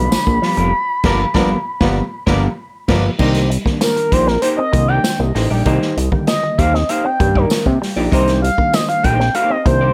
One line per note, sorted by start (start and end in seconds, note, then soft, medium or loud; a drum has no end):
0.00 0.26 D3 medium
0.00 0.26 F3 medium
0.00 0.27 A#3 medium
0.00 0.70 A#3 medium
0.00 0.70 B3 medium
0.00 0.27 D4 medium
0.00 0.70 D4 medium
0.00 0.70 D5 loud
0.00 2.55 B5 loud
0.11 0.18 A#1 soft
0.11 muted clean electric guitar stroke soft
0.11 muted hollow-body jazz guitar stroke medium
0.11 snare loud
0.11 tambourine medium
0.27 0.40 A#1 medium
0.27 muted hollow-body jazz guitar stroke medium
0.27 kick medium
0.42 0.55 F3 medium
0.42 0.55 G3 medium
0.42 0.56 B3 medium
0.42 0.56 F4 medium
0.42 0.56 B4 medium
0.42 snare soft
0.42 open hi-hat medium
0.57 0.73 F1 medium
0.57 0.70 F3 medium
0.57 0.72 G3 medium
0.57 0.71 B3 medium
0.57 0.71 F4 medium
0.57 0.71 A#4 medium
0.57 closed hi-hat medium
1.03 1.25 G1 loud
1.03 1.25 D3 loud
1.03 1.25 F3 medium
1.03 1.25 G3 medium
1.03 1.25 A#3 medium
1.03 1.20 B3 loud
1.03 1.26 B3 medium
1.03 1.26 B3 loud
1.03 1.20 D4 medium
1.03 1.26 F4 loud
1.03 1.20 A#4 loud
1.03 1.26 A#4 loud
1.03 1.20 D5 loud
1.03 kick loud
1.03 snare medium
1.03 crash medium
1.34 1.56 G1 medium
1.34 1.56 D3 loud
1.34 1.56 F3 loud
1.34 1.56 G3 loud
1.34 1.56 A#3 loud
1.34 1.51 B3 loud
1.34 1.56 B3 loud
1.34 1.57 B3 loud
1.34 1.50 D4 loud
1.34 1.56 F4 loud
1.34 1.50 A#4 loud
1.34 1.57 A#4 loud
1.34 1.50 D5 loud
1.34 kick loud
1.34 snare medium
1.80 2.02 G1 loud
1.80 2.02 D3 loud
1.80 2.02 F3 loud
1.80 2.03 G3 loud
1.80 2.02 A#3 loud
1.80 1.97 B3 loud
1.80 2.03 B3 loud
1.80 1.96 D4 medium
1.80 2.02 F4 loud
1.80 1.97 A#4 loud
1.80 2.02 B4 medium
1.80 1.96 D5 loud
1.80 kick loud
1.80 snare loud
2.26 2.48 G1 loud
2.26 2.48 D3 loud
2.26 2.48 F3 medium
2.26 2.49 G3 loud
2.26 2.49 A#3 loud
2.26 2.43 B3 loud
2.26 2.49 B3 loud
2.26 2.49 B3 medium
2.26 2.43 D4 loud
2.26 2.48 F4 loud
2.26 2.48 A#4 loud
2.26 2.43 A#4 loud
2.26 2.43 D5 loud
2.26 kick loud
2.26 snare loud
2.88 3.10 G1 loud
2.88 3.09 D3 loud
2.88 3.10 F3 loud
2.88 3.09 G3 loud
2.88 3.10 A#3 loud
2.88 3.10 B3 loud
2.88 3.05 B3 loud
2.88 3.10 B3 loud
2.88 3.04 D4 medium
2.88 3.10 F4 loud
2.88 3.04 A#4 loud
2.88 3.10 B4 loud
2.88 3.04 D5 medium
2.88 kick loud
2.88 snare loud
2.88 crash medium
3.19 3.58 C2 medium
3.19 3.45 D#3 medium
3.19 3.46 G3 medium
3.19 3.48 A#3 medium
3.19 3.46 A#3 medium
3.19 3.40 C4 loud
3.19 3.46 D4 loud
3.19 3.48 D#4 loud
3.19 3.40 D#4 loud
3.19 3.48 G4 loud
3.19 3.40 A#4 medium
3.19 3.48 C5 loud
3.19 3.40 D#5 loud
3.19 kick medium
3.19 crash medium
3.34 muted clean electric guitar stroke soft
3.34 snare soft
3.34 closed hi-hat soft
3.50 3.63 G3 medium
3.50 closed hi-hat medium
3.65 4.26 D#3 medium
3.65 4.26 G3 medium
3.65 3.78 A#3 medium
3.65 4.27 A#3 medium
3.65 3.73 C4 medium
3.65 muted hollow-body jazz guitar stroke medium
3.65 kick medium
3.65 snare soft
3.73 4.30 D4 medium
3.81 3.94 A#3 medium
3.81 4.13 A#4 medium
3.81 muted hollow-body jazz guitar stroke soft
3.81 snare medium
3.81 closed hi-hat medium
3.81 tambourine medium
3.96 muted clean electric guitar stroke soft
3.96 muted hollow-body jazz guitar stroke soft
3.96 closed hi-hat medium
4.12 4.38 A#1 medium
4.12 4.28 A#3 medium
4.12 4.27 D#4 medium
4.12 4.27 G4 medium
4.12 4.29 C5 medium
4.12 4.26 C5 medium
4.12 kick medium
4.12 closed hi-hat medium
4.27 4.40 C4 medium
4.27 4.41 A#4 medium
4.27 muted hollow-body jazz guitar stroke soft
4.27 snare soft
4.42 4.59 A#3 medium
4.42 4.59 D#4 medium
4.42 4.59 G4 medium
4.42 4.49 C5 medium
4.42 4.59 C5 loud
4.42 muted clean electric guitar stroke soft
4.42 closed hi-hat medium
4.57 4.71 C4 medium
4.57 4.89 D#5 medium
4.73 4.99 C2 loud
4.73 5.25 D#3 medium
4.73 5.26 G3 medium
4.73 4.86 A#3 medium
4.73 5.26 A#3 medium
4.73 4.81 C4 medium
4.73 muted hollow-body jazz guitar stroke soft
4.73 kick loud
4.73 closed hi-hat medium
4.81 5.29 D4 medium
4.88 5.02 A#3 medium
4.88 5.02 D#4 medium
4.88 5.02 G4 medium
4.88 5.01 D5 medium
4.88 5.19 G5 medium
5.04 snare loud
5.04 closed hi-hat medium
5.04 tambourine medium
5.19 5.32 C2 medium
5.19 5.32 A#3 medium
5.19 muted hollow-body jazz guitar stroke soft
5.35 5.48 A1 medium
5.35 5.48 A#3 medium
5.35 5.48 D#4 medium
5.35 5.48 G4 medium
5.35 5.48 C5 medium
5.35 muted clean electric guitar stroke soft
5.35 snare soft
5.35 open hi-hat medium
5.50 5.63 A#1 medium
5.50 5.63 G3 medium
5.50 5.64 A#3 soft
5.50 5.64 D#4 medium
5.50 5.63 G4 medium
5.50 5.63 D5 medium
5.65 5.79 C2 loud
5.65 5.92 D#3 medium
5.65 5.92 G3 medium
5.65 5.94 A#3 loud
5.65 5.92 A#3 medium
5.65 5.94 D#4 loud
5.65 5.93 D#4 loud
5.65 5.95 G4 loud
5.65 5.95 C5 loud
5.65 kick medium
5.65 closed hi-hat medium
5.81 muted clean electric guitar stroke soft
5.81 snare soft
5.97 6.10 C2 medium
5.97 6.10 G3 medium
5.97 closed hi-hat medium
6.12 6.74 D3 medium
6.12 6.73 D#3 medium
6.12 6.73 G3 medium
6.12 6.25 A#3 medium
6.12 6.73 A#3 medium
6.12 muted hollow-body jazz guitar stroke soft
6.12 kick medium
6.27 6.40 A#3 medium
6.27 6.59 D#5 loud
6.27 muted hollow-body jazz guitar stroke soft
6.27 snare loud
6.27 closed hi-hat medium
6.27 tambourine medium
6.43 muted hollow-body jazz guitar stroke medium
6.43 muted clean electric guitar stroke soft
6.58 6.84 D#2 medium
6.58 6.74 A#3 medium
6.58 6.74 D#4 medium
6.58 6.73 G4 medium
6.58 6.73 C5 medium
6.58 6.75 F5 loud
6.58 kick loud
6.58 closed hi-hat medium
6.74 6.86 C4 medium
6.74 6.90 D#5 medium
6.74 muted hollow-body jazz guitar stroke soft
6.74 snare soft
6.89 7.05 A#3 medium
6.89 7.06 D#4 medium
6.89 7.06 G4 medium
6.89 7.06 C5 medium
6.89 7.06 F5 medium
6.89 muted clean electric guitar stroke soft
6.89 closed hi-hat medium
7.05 7.17 C4 medium
7.05 7.38 G5 loud
7.20 7.46 G2 loud
7.20 7.72 D#3 medium
7.20 7.72 G3 medium
7.20 7.32 A#3 medium
7.20 7.72 A#3 medium
7.20 7.27 C#4 medium
7.20 muted hollow-body jazz guitar stroke soft
7.20 kick loud
7.20 closed hi-hat medium
7.28 7.76 D4 medium
7.35 7.49 A#3 soft
7.35 7.48 D#4 medium
7.35 7.48 G4 medium
7.35 7.67 A#4 medium
7.35 7.48 D5 medium
7.35 kick medium
7.50 muted clean electric guitar stroke soft
7.50 muted hollow-body jazz guitar stroke soft
7.50 snare loud
7.50 closed hi-hat medium
7.50 tambourine medium
7.66 7.79 C3 medium
7.66 7.79 A#3 medium
7.66 muted hollow-body jazz guitar stroke soft
7.66 kick medium
7.82 7.94 G3 medium
7.82 snare soft
7.82 open hi-hat medium
7.96 8.09 A#1 medium
7.96 8.10 A#3 medium
7.96 8.11 D#4 medium
7.96 8.12 G4 medium
7.96 8.13 D5 medium
8.11 8.50 C2 loud
8.11 8.38 D#3 medium
8.11 8.38 G3 medium
8.11 8.40 A#3 loud
8.11 8.38 A#3 medium
8.11 8.32 C4 medium
8.11 8.39 D4 medium
8.11 8.32 D#4 medium
8.11 8.41 D#4 loud
8.11 8.41 G4 medium
8.11 8.32 A#4 medium
8.11 8.41 C5 medium
8.11 8.41 C5 loud
8.11 8.32 D#5 loud
8.11 kick loud
8.11 closed hi-hat medium
8.28 muted clean electric guitar stroke soft
8.28 snare soft
8.28 closed hi-hat soft
8.42 8.56 G3 medium
8.42 8.75 F5 loud
8.42 closed hi-hat medium
8.58 9.19 D#3 medium
8.58 9.19 G3 medium
8.58 8.71 A#3 medium
8.58 9.19 A#3 medium
8.58 9.19 D4 medium
8.58 muted hollow-body jazz guitar stroke soft
8.58 kick medium
8.73 8.86 A#3 medium
8.73 8.88 D#5 loud
8.73 muted hollow-body jazz guitar stroke soft
8.73 snare loud
8.73 closed hi-hat medium
8.73 tambourine medium
8.89 9.05 F5 medium
8.89 muted clean electric guitar stroke soft
8.89 muted hollow-body jazz guitar stroke soft
8.89 closed hi-hat medium
9.03 9.30 A#1 medium
9.03 9.24 A#3 medium
9.03 9.19 D#4 medium
9.03 9.19 G4 medium
9.03 9.18 C5 medium
9.03 9.35 G5 loud
9.03 kick medium
9.03 closed hi-hat medium
9.19 9.32 C4 medium
9.19 muted hollow-body jazz guitar stroke soft
9.19 snare soft
9.34 9.55 A#3 medium
9.34 9.55 D#4 medium
9.34 9.55 G4 medium
9.34 9.56 C5 medium
9.34 9.52 F5 medium
9.34 muted clean electric guitar stroke soft
9.34 closed hi-hat medium
9.50 9.63 C4 medium
9.50 9.66 D#5 medium
9.65 9.91 C2 medium
9.65 9.94 D#3 medium
9.65 9.94 G3 medium
9.65 9.78 A#3 medium
9.65 9.94 A#3 medium
9.65 9.73 C4 medium
9.65 9.94 C5 medium
9.65 muted hollow-body jazz guitar stroke soft
9.65 kick loud
9.65 closed hi-hat medium
9.73 9.94 D4 medium
9.81 9.94 A#3 medium
9.81 9.94 D#4 medium
9.81 9.94 G4 medium
9.81 9.94 D5 medium